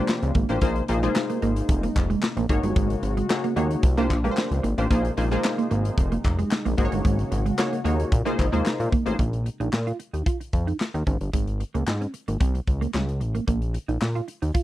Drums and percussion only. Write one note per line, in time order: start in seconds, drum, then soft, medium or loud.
0.08 snare loud
0.08 clap medium
0.22 closed hi-hat medium
0.35 kick loud
0.35 closed hi-hat medium
0.49 closed hi-hat medium
0.61 kick loud
0.61 closed hi-hat medium
0.76 closed hi-hat soft
0.88 closed hi-hat medium
1.03 closed hi-hat medium
1.16 snare loud
1.16 clap medium
1.16 clap loud
1.30 closed hi-hat medium
1.42 closed hi-hat medium
1.56 closed hi-hat medium
1.69 kick loud
1.69 closed hi-hat loud
1.83 closed hi-hat medium
1.96 kick loud
1.96 clap medium
1.96 closed hi-hat medium
2.10 closed hi-hat soft
2.22 snare loud
2.22 clap medium
2.37 closed hi-hat medium
2.49 kick loud
2.49 closed hi-hat medium
2.63 closed hi-hat medium
2.76 kick loud
2.76 closed hi-hat medium
2.90 closed hi-hat medium
3.03 closed hi-hat medium
3.17 closed hi-hat medium
3.30 snare loud
3.30 clap medium
3.44 closed hi-hat soft
3.57 closed hi-hat medium
3.71 closed hi-hat medium
3.83 kick loud
3.83 closed hi-hat loud
3.98 closed hi-hat medium
4.10 kick medium
4.10 clap medium
4.10 closed hi-hat medium
4.25 closed hi-hat soft
4.37 snare loud
4.37 clap medium
4.37 clap loud
4.52 closed hi-hat medium
4.64 closed hi-hat medium
4.78 closed hi-hat medium
4.91 kick loud
4.91 closed hi-hat medium
5.05 closed hi-hat medium
5.17 closed hi-hat medium
5.32 closed hi-hat medium
5.44 snare loud
5.44 clap loud
5.44 clap medium
5.59 closed hi-hat medium
5.71 closed hi-hat medium
5.85 closed hi-hat medium
5.98 kick loud
5.98 closed hi-hat medium
6.12 closed hi-hat medium
6.24 kick loud
6.24 clap medium
6.24 closed hi-hat medium
6.39 closed hi-hat soft
6.51 snare loud
6.51 clap medium
6.66 closed hi-hat medium
6.78 kick loud
6.78 closed hi-hat medium
6.92 closed hi-hat medium
7.05 kick loud
7.05 closed hi-hat medium
7.19 closed hi-hat medium
7.32 closed hi-hat medium
7.46 closed hi-hat medium
7.59 snare loud
7.59 clap medium
7.59 clap loud
7.73 closed hi-hat medium
7.86 closed hi-hat medium
8.00 closed hi-hat medium
8.12 kick loud
8.12 closed hi-hat loud
8.27 closed hi-hat medium
8.39 kick medium
8.39 clap medium
8.39 closed hi-hat medium
8.54 closed hi-hat soft
8.66 snare loud
8.66 clap medium
8.67 clap loud
8.80 closed hi-hat medium
8.92 kick loud
8.92 closed hi-hat medium
9.06 closed hi-hat medium
9.19 kick loud
9.19 closed hi-hat medium
9.33 closed hi-hat soft
9.46 closed hi-hat medium
9.61 closed hi-hat soft
9.73 snare loud
9.73 clap medium
9.87 closed hi-hat soft
10.00 closed hi-hat medium
10.14 closed hi-hat medium
10.26 kick loud
10.26 closed hi-hat medium
10.41 closed hi-hat medium
10.53 kick loud
10.53 closed hi-hat medium
10.68 closed hi-hat soft
10.80 snare loud
10.80 clap medium
10.95 closed hi-hat medium
11.07 kick medium
11.07 closed hi-hat medium
11.21 closed hi-hat medium
11.34 kick loud
11.34 closed hi-hat medium
11.47 closed hi-hat soft
11.60 closed hi-hat medium
11.75 closed hi-hat medium
11.87 snare loud
11.87 clap medium
12.02 closed hi-hat soft
12.14 closed hi-hat medium
12.28 closed hi-hat medium
12.41 kick loud
12.41 closed hi-hat loud
12.55 closed hi-hat soft
12.67 kick medium
12.67 closed hi-hat medium
12.82 closed hi-hat soft
12.94 snare loud
12.94 clap medium
13.09 closed hi-hat soft
13.21 closed hi-hat medium
13.35 closed hi-hat medium
13.48 kick loud
13.48 closed hi-hat medium
13.62 closed hi-hat soft
13.75 closed hi-hat medium
13.89 closed hi-hat soft
14.02 snare loud
14.02 clap medium
14.16 closed hi-hat soft
14.28 closed hi-hat medium
14.42 closed hi-hat medium
14.55 kick loud
14.55 closed hi-hat medium